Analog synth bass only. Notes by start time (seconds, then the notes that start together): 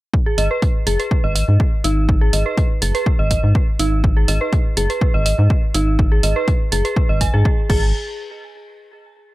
0.38 G#1
0.87 F#1
1.24 G#1
1.48 G#2
1.84 G#1
2.33 G#1
2.82 F#1
3.19 G#1
3.44 G#2
3.79 G#1
4.28 G#1
4.77 F#1
5.14 G#1
5.39 G#2
5.75 G#1
6.23 G#1
6.72 F#1
7.09 G#1
7.34 G#2
7.70 G#1